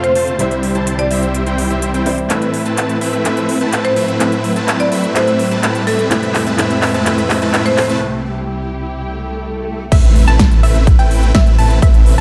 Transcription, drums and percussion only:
0.04 closed hi-hat soft
0.15 open hi-hat loud
0.27 closed hi-hat soft
0.39 closed hi-hat medium
0.51 closed hi-hat soft
0.63 open hi-hat loud
0.75 closed hi-hat soft
0.87 closed hi-hat medium
0.99 closed hi-hat soft
1.11 open hi-hat loud
1.23 closed hi-hat soft
1.35 closed hi-hat medium
1.47 closed hi-hat soft
1.58 open hi-hat loud
1.70 closed hi-hat soft
1.82 closed hi-hat medium
1.94 closed hi-hat soft
2.06 open hi-hat loud
2.18 closed hi-hat soft
2.30 clap soft
2.30 closed hi-hat medium
2.42 closed hi-hat soft
2.54 open hi-hat loud
2.66 closed hi-hat soft
2.77 clap soft
2.77 closed hi-hat medium
2.89 closed hi-hat soft
3.01 open hi-hat loud
3.13 closed hi-hat soft
3.25 clap soft
3.25 closed hi-hat medium
3.37 closed hi-hat soft
3.49 open hi-hat loud
3.61 closed hi-hat soft
3.73 clap medium
3.73 closed hi-hat medium
3.85 closed hi-hat soft
3.96 open hi-hat loud
4.08 closed hi-hat soft
4.20 clap medium
4.20 closed hi-hat medium
4.32 closed hi-hat soft
4.44 open hi-hat loud
4.56 closed hi-hat soft
4.68 clap medium
4.68 closed hi-hat medium
4.80 closed hi-hat soft
4.92 open hi-hat loud
5.04 closed hi-hat soft
5.16 clap medium
5.16 closed hi-hat medium
5.27 closed hi-hat soft
5.39 open hi-hat loud
5.51 closed hi-hat soft
5.63 clap medium
5.63 closed hi-hat medium
5.75 closed hi-hat soft
5.87 open hi-hat loud
5.99 closed hi-hat soft
6.11 clap medium
6.11 closed hi-hat medium
6.23 closed hi-hat soft
6.35 clap medium
6.35 open hi-hat loud
6.47 closed hi-hat soft
6.58 clap medium
6.58 closed hi-hat loud
6.70 closed hi-hat soft
6.82 clap medium
6.82 open hi-hat loud
6.94 closed hi-hat soft
7.06 clap medium
7.06 closed hi-hat medium
7.18 closed hi-hat soft
7.30 clap medium
7.30 open hi-hat loud
7.42 closed hi-hat soft
7.54 clap medium
7.54 closed hi-hat medium
7.66 closed hi-hat soft
7.78 clap medium
7.78 open hi-hat loud
7.89 closed hi-hat soft
9.92 kick loud
9.92 closed hi-hat loud
9.92 crash loud
9.92 ride medium
10.04 closed hi-hat soft
10.16 open hi-hat loud
10.28 closed hi-hat soft
10.39 kick loud
10.39 snare loud
10.39 closed hi-hat loud
10.39 ride medium
10.51 closed hi-hat soft
10.63 open hi-hat loud
10.75 closed hi-hat soft
10.87 kick loud
10.87 closed hi-hat loud
10.87 ride medium
10.99 closed hi-hat soft
11.11 open hi-hat loud
11.23 closed hi-hat soft
11.35 kick loud
11.35 snare loud
11.35 closed hi-hat loud
11.35 ride medium
11.47 closed hi-hat soft
11.59 open hi-hat loud
11.70 closed hi-hat soft
11.82 kick loud
11.82 closed hi-hat medium
11.82 ride medium
11.94 closed hi-hat soft
12.06 open hi-hat loud

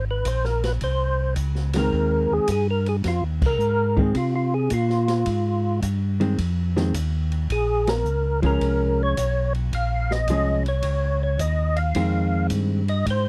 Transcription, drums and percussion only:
0.25 kick soft
0.25 hi-hat pedal medium
0.25 ride medium
0.44 snare soft
0.63 snare soft
0.63 ride soft
0.81 kick soft
0.81 ride medium
1.36 kick soft
1.36 hi-hat pedal soft
1.36 ride medium
1.55 snare soft
1.73 snare soft
1.73 ride medium
1.92 kick soft
2.48 kick soft
2.48 hi-hat pedal medium
2.48 ride medium
2.86 ride soft
3.04 kick soft
3.04 snare soft
3.04 ride medium
3.42 kick medium
3.42 crash medium
3.60 hi-hat pedal medium
3.97 kick medium
4.15 kick soft
4.15 ride medium
4.70 kick soft
4.70 hi-hat pedal medium
4.70 ride medium
4.89 snare soft
5.08 snare soft
5.08 ride soft
5.26 kick soft
5.26 ride medium
5.82 kick soft
5.82 hi-hat pedal medium
5.82 ride medium
6.21 ride soft
6.38 kick soft
6.38 ride medium
6.76 snare medium
6.94 kick soft
6.94 hi-hat pedal medium
6.94 ride medium
7.32 ride soft
7.50 kick soft
7.50 ride medium
7.87 snare medium
7.87 ride medium
8.05 hi-hat pedal soft
8.43 kick medium
8.43 ride soft
8.61 kick soft
8.61 ride medium
9.17 kick soft
9.17 hi-hat pedal medium
9.17 ride medium
9.55 ride soft
9.73 kick soft
9.73 ride medium
10.11 snare soft
10.28 kick soft
10.28 hi-hat pedal soft
10.28 ride medium
10.66 ride soft
10.83 kick soft
10.83 ride medium
11.39 kick soft
11.39 hi-hat pedal medium
11.39 ride medium
11.77 ride soft
11.95 kick soft
11.95 ride medium
12.50 kick soft
12.50 hi-hat pedal soft
12.50 ride medium
12.88 ride soft
13.06 kick soft
13.06 ride medium

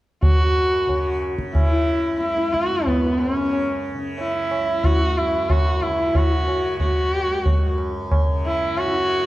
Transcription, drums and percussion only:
0.23 tabla tin medium
0.23 tabla ge medium
0.89 tabla tin medium
0.89 tabla ge medium
1.22 tabla na medium
1.39 tabla ke medium
1.55 tabla na medium
1.55 tabla ge medium
2.21 tabla te medium
2.37 tabla te medium
2.54 tabla ke medium
2.70 tabla te medium
2.87 tabla tin medium
2.87 tabla ge medium
3.20 tabla na soft
3.53 tabla na medium
4.18 tabla tin medium
4.51 tabla na medium
4.84 tabla tin medium
4.84 tabla ge medium
5.50 tabla na medium
5.50 tabla ge medium
5.82 tabla ge soft
6.15 tabla tin medium
6.15 tabla ge medium
6.48 tabla na medium
6.80 tabla tin medium
6.80 tabla ge medium
7.46 tabla tin medium
7.46 tabla ge medium
7.78 tabla na medium
8.11 tabla na medium
8.11 tabla ge medium
8.77 tabla na medium

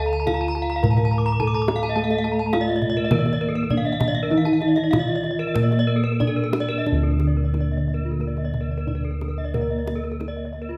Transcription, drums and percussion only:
0.27 kendang slap soft
0.27 kendang high medium
0.27 kendang low medium
0.56 kendang slap soft
0.83 kendang slap soft
0.83 kendang low medium
0.98 kendang slap soft
1.40 kendang low medium
1.68 kendang slap soft
1.68 kendang high medium
1.83 kendang slap soft
2.10 kendang slap soft
2.25 kendang slap soft
2.53 kendang slap soft
2.53 kendang high medium
2.82 kendang slap soft
2.82 kendang low medium
3.11 kendang slap soft
3.11 kendang high medium
3.11 kendang low loud
3.26 kendang slap soft
3.70 kendang low medium
4.01 kendang slap soft
4.01 kendang high medium
4.01 kendang low medium
4.46 kendang slap soft
4.62 kendang slap soft
4.77 kendang slap soft
4.93 kendang slap soft
4.93 kendang high medium
4.93 kendang low medium
5.24 kendang slap soft
5.55 kendang slap soft
5.55 kendang low loud
5.72 kendang slap soft
6.21 kendang slap soft
6.21 kendang low medium
6.53 kendang slap soft
6.53 kendang high medium
6.70 kendang slap soft
6.86 kendang high soft
6.86 kendang low soft
7.20 kendang high soft
7.36 kendang slap soft
7.54 kendang high soft
7.87 kendang slap soft
8.20 kendang slap soft
8.37 kendang slap soft
8.54 kendang slap soft
8.54 kendang low soft
8.88 kendang slap soft
8.88 kendang low soft
9.21 kendang slap soft
9.21 kendang high soft
9.38 kendang slap soft
9.54 kendang high soft
9.54 kendang low soft
9.87 kendang high soft
10.04 kendang slap soft
10.21 kendang high soft
10.54 kendang slap soft
10.71 kendang slap soft

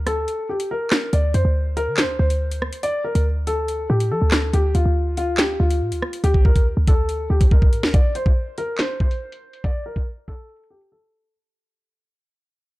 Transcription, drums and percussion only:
0.07 cross-stick medium
0.07 closed hi-hat medium
0.28 closed hi-hat medium
0.60 closed hi-hat medium
0.91 cross-stick loud
0.91 snare loud
0.91 clap medium
0.91 closed hi-hat medium
1.13 closed hi-hat medium
1.34 closed hi-hat medium
1.77 closed hi-hat medium
1.97 snare loud
1.97 clap loud
1.97 closed hi-hat medium
2.30 closed hi-hat medium
2.52 closed hi-hat medium
2.62 cross-stick loud
2.73 closed hi-hat medium
2.83 closed hi-hat medium
3.15 closed hi-hat medium
3.47 closed hi-hat medium
3.68 closed hi-hat medium
4.00 closed hi-hat medium
4.31 cross-stick loud
4.31 snare loud
4.31 clap loud
4.31 closed hi-hat medium
4.53 closed hi-hat medium
4.75 closed hi-hat medium
5.17 closed hi-hat medium
5.38 snare loud
5.38 clap loud
5.38 closed hi-hat medium
5.70 closed hi-hat medium
5.92 closed hi-hat medium
6.02 cross-stick loud
6.13 closed hi-hat medium
6.24 closed hi-hat medium
6.34 kick medium
6.45 kick medium
6.56 kick medium
6.56 closed hi-hat medium
6.87 kick medium
6.87 closed hi-hat medium
7.09 closed hi-hat medium
7.41 kick medium
7.41 closed hi-hat medium
7.51 kick loud
7.62 kick loud
7.73 closed hi-hat medium
7.83 snare loud
7.94 kick loud
7.94 closed hi-hat medium
8.15 closed hi-hat medium
8.26 kick medium
8.58 closed hi-hat medium
8.78 snare loud
8.78 clap loud
8.78 closed hi-hat medium
9.00 kick loud
9.11 closed hi-hat medium
9.32 closed hi-hat medium
9.53 closed hi-hat medium
9.64 kick loud
9.64 closed hi-hat medium
9.96 kick medium
9.96 closed hi-hat medium
10.28 kick medium
10.28 closed hi-hat medium
10.49 closed hi-hat soft
10.56 closed hi-hat medium
10.63 closed hi-hat medium
10.81 closed hi-hat medium

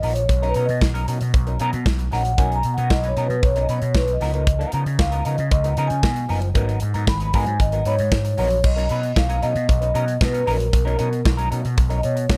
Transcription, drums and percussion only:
0.03 open hi-hat medium
0.15 closed hi-hat medium
0.29 kick loud
0.29 closed hi-hat medium
0.43 closed hi-hat soft
0.54 closed hi-hat medium
0.69 closed hi-hat soft
0.81 kick loud
0.81 snare loud
0.95 closed hi-hat medium
1.08 closed hi-hat medium
1.21 closed hi-hat medium
1.34 kick loud
1.34 closed hi-hat medium
1.47 closed hi-hat soft
1.60 closed hi-hat medium
1.73 closed hi-hat medium
1.86 kick loud
1.86 snare loud
1.99 closed hi-hat medium
2.12 snare soft
2.12 open hi-hat medium
2.25 closed hi-hat medium
2.38 kick loud
2.38 closed hi-hat medium
2.52 closed hi-hat soft
2.63 closed hi-hat medium
2.78 closed hi-hat soft
2.90 kick loud
2.90 snare loud
3.04 closed hi-hat medium
3.17 closed hi-hat medium
3.30 closed hi-hat soft
3.43 kick loud
3.43 closed hi-hat medium
3.56 closed hi-hat soft
3.69 closed hi-hat medium
3.82 closed hi-hat medium
3.95 kick loud
3.95 snare loud
4.08 closed hi-hat soft
4.21 snare soft
4.21 open hi-hat medium
4.34 closed hi-hat medium
4.47 kick loud
4.47 closed hi-hat medium
4.61 closed hi-hat soft
4.72 closed hi-hat medium
4.86 closed hi-hat medium
4.99 kick loud
4.99 snare loud
5.12 closed hi-hat medium
5.25 closed hi-hat medium
5.38 closed hi-hat soft
5.51 kick loud
5.51 closed hi-hat medium
5.64 closed hi-hat soft
5.77 closed hi-hat medium
5.90 closed hi-hat medium
6.03 kick loud
6.03 snare loud
6.16 closed hi-hat soft
6.29 open hi-hat medium
6.42 closed hi-hat medium
6.55 kick loud
6.55 closed hi-hat medium
6.69 closed hi-hat soft
6.80 closed hi-hat medium
6.94 closed hi-hat soft
7.07 kick loud
7.07 snare loud
7.20 closed hi-hat medium
7.33 kick medium
7.33 open hi-hat medium
7.46 closed hi-hat medium
7.60 kick loud
7.60 closed hi-hat medium
7.72 closed hi-hat soft
7.85 closed hi-hat medium
7.99 closed hi-hat medium
8.12 kick loud
8.12 snare loud
8.25 closed hi-hat medium
8.38 open hi-hat medium
8.50 closed hi-hat medium
8.64 kick loud
8.64 crash loud
8.78 closed hi-hat soft
8.89 closed hi-hat medium
9.03 closed hi-hat soft
9.16 kick loud
9.16 snare loud
9.30 closed hi-hat medium
9.43 closed hi-hat medium
9.56 closed hi-hat medium
9.69 kick loud
9.69 closed hi-hat medium
9.82 closed hi-hat soft
9.95 closed hi-hat medium
10.08 closed hi-hat medium
10.21 kick loud
10.21 snare loud
10.34 closed hi-hat soft
10.47 open hi-hat medium
10.60 closed hi-hat medium
10.73 kick loud
10.73 closed hi-hat medium
10.87 closed hi-hat soft
10.99 closed hi-hat medium
11.13 closed hi-hat soft
11.25 kick loud
11.25 snare loud
11.39 closed hi-hat medium
11.52 closed hi-hat medium
11.65 closed hi-hat medium
11.78 kick loud
11.78 closed hi-hat medium
11.90 closed hi-hat soft
12.03 closed hi-hat medium
12.17 closed hi-hat medium
12.30 kick loud
12.30 snare loud

